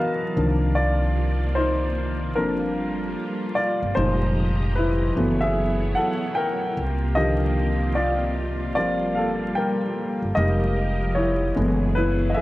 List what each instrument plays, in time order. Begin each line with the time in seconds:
Already playing: upright piano E3 F#3 G#3 B3 E4 F#4 A#4 B4 C#5 D#5 F5, string machine E3 F#3 B3 A5
0.36 upright bass C2, string machine C3 D#3 A#3 F4 D5, upright piano D#3 F3 A#3 D4
0.75 upright piano F4 D5
1.55 upright piano D#4 C5
2.35 upright bass G1, upright piano F3 A#3 C4 D4 A4 A#4, string machine G3 F4
3.55 upright piano F4 D5
3.83 upright bass G1
3.95 upright bass F1, upright piano A#2 F3 G3 G#3 D#4 C5, string machine F3 G4 D#5 A#5
4.75 upright piano E4 B4
5.16 upright bass F#1, upright piano E3 F#3 A3 B3, string machine F#3 B3 E4 C#5
5.41 upright piano G#4 E5
5.95 upright piano A4 F#5
6.35 upright piano A#4 G5
6.76 upright bass C2, string machine C3 A#3 C4 F4 G4
7.15 upright piano D3 D#3 F3 A#3 G4 D#5
7.95 upright piano F4 D5
8.75 upright bass G1, upright piano F3 G3 A#3 C4 F4 D5, string machine G3 A#3
9.15 upright piano A4 F5
9.55 upright piano A#4 G5
10.22 upright bass G1
10.35 upright bass F1, string machine F3 G4 A#4 D#5, upright piano G3 G#3 A#3 D#4 G4 D#5
11.15 upright piano E4 C#5
11.56 upright bass F#1, upright piano E3 G#3 A3 B3, string machine F#3 B3 E4 G#4
11.95 upright piano E4 B4
12.30 upright piano D#5
12.34 upright piano G#4 E5